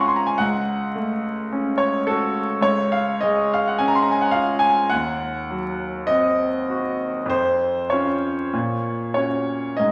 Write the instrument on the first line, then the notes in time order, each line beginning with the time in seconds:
grand piano
Already playing: C#2 G#3 C#4 F4 C#5 F5 F#5 G#5 A#5 C6
0.00 C#6
0.08 C6
0.16 A#5
0.26 G#5
0.38 C#2 F#5
0.95 A3
1.52 C#4
1.78 C#5
2.07 F#4 A4
2.61 C#2 C#5
2.92 F5
3.21 G#3 D#5
3.54 F5
3.67 F#5
3.78 C#4 G#5
3.88 A#5
3.95 C6
4.02 A#5
4.11 G#5
4.21 F#5
4.31 F4 F5
4.59 G#5
4.89 D#2 F#5
5.50 F#3
6.07 C4 D#5
6.70 F#4
7.26 F2 C5
7.90 C#4 F4 C#5
8.53 A#2
9.14 C#4 F#4 C#5
9.77 G#2 D#5